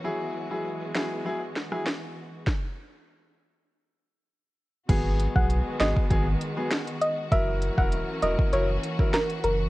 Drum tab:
CC |----------------|----------------|x---------------|----------------|
HH |----------------|----------------|x-x-x-x-x-x-xxx-|x-x-x-x-x-x-xxx-|
SD |------o---oro---|o---------------|------o-----o---|------------o---|
BD |----------------|o---------------|o--o---oo-------|o--o---o---o----|